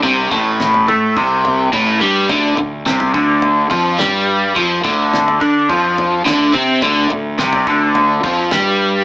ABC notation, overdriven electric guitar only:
X:1
M:4/4
L:1/8
Q:1/4=106
K:Ddor
V:1 name="Overdriven electric guitar" clef=bass
C, A,,2 A, C,2 A,, G, | D, D, C, D,2 F, G,2 | F, D,2 D F,2 D, C | D, D, C, D,2 F, G,2 |]